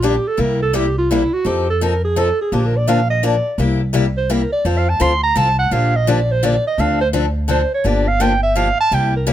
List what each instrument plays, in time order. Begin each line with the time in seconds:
Already playing: upright bass A#1
0.02 steel-string acoustic guitar D#3 G3 A#3 D4 G4, clarinet G4
0.28 clarinet A4
0.37 upright bass C2, steel-string acoustic guitar C3 G3 A#3 E4 G4, clarinet A#4
0.62 clarinet A4
0.73 steel-string acoustic guitar C3 G3 A#3 E4 G4, clarinet G4
0.98 clarinet F4
1.11 steel-string acoustic guitar C3 G3 A#3 E4 G4, clarinet E4
1.33 clarinet F#4
1.45 upright bass F2, steel-string acoustic guitar F3 C4 D#4 A4, clarinet G4
1.70 clarinet A4
1.81 steel-string acoustic guitar F3 C4 D#4 A4, clarinet A#4
2.05 clarinet G#4
2.16 steel-string acoustic guitar F3 C4 D#4 A4, clarinet A4
2.41 clarinet G#4
2.52 upright bass A#1, steel-string acoustic guitar D3 F3 A#3 D4 A#4, clarinet G4
2.67 clarinet A#4
2.77 clarinet D5
2.87 steel-string acoustic guitar D3 F3 A#3 D4 A#4, clarinet F5
3.10 clarinet D#5
3.23 steel-string acoustic guitar D3 F3 A#3 D4 A#4, clarinet D5
3.58 upright bass C2, steel-string acoustic guitar C3 G3 A#3 E4 G4
3.93 steel-string acoustic guitar C3 G3 A#3 E4 G4
4.17 clarinet C5
4.30 steel-string acoustic guitar C3 G3 A#3 E4 G4, clarinet A#4
4.52 clarinet D5
4.65 upright bass F2, steel-string acoustic guitar F3 C4 F4 A4, clarinet C5
4.78 clarinet F5
4.89 clarinet A5
5.00 upright bass D2, steel-string acoustic guitar F3 C4 F4 A4, clarinet C6
5.24 clarinet A#5
5.36 upright bass C2, steel-string acoustic guitar F3 C4 F4 A4, clarinet A5
5.59 clarinet F#5
5.71 upright bass A#1, steel-string acoustic guitar D3 F3 A#3 D4 G4, clarinet F5
5.96 clarinet D#5
6.07 steel-string acoustic guitar D3 F3 A#3 D4 G4, clarinet D5
6.31 clarinet C5
6.43 steel-string acoustic guitar D3 F3 A#3 D4 G4, clarinet D5
6.67 clarinet D#5
6.78 upright bass D2, steel-string acoustic guitar D3 F3 C4 D4 A4, clarinet F5
7.01 clarinet C5
7.13 steel-string acoustic guitar D3 F3 C4 D4 A4
7.48 steel-string acoustic guitar D3 F3 C4 D4 A4, clarinet C5
7.74 clarinet C#5
7.84 upright bass G1, steel-string acoustic guitar D3 F3 A#3 D4 G4, clarinet D5
8.08 clarinet F5
8.20 steel-string acoustic guitar D3 F3 A#3 D4 G4, clarinet G5
8.43 clarinet E5
8.55 steel-string acoustic guitar D3 F3 A#3 D4 G4, clarinet F5
8.81 clarinet A5
8.91 upright bass C2, steel-string acoustic guitar C3 G3 A#3 E4 G4, clarinet G5
9.16 clarinet A#4
9.27 steel-string acoustic guitar C3 G3 A#3 E4 G4